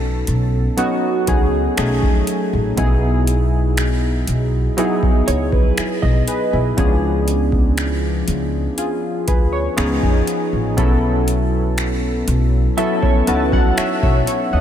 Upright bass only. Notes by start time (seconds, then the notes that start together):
Already playing: B1
0.28 B1
1.28 C#2
1.78 B1
2.03 D#2
2.53 A1
2.78 B1
4.28 B1
5.28 C#2
5.78 muted upright bass stroke
6.03 B1
6.53 B1
6.78 C#2
8.28 C#2
9.28 D2
9.78 C#2
10.03 F2
10.53 A1
10.78 B1
12.28 B1
13.28 C#2
13.78 muted upright bass stroke
14.03 B1
14.53 D#2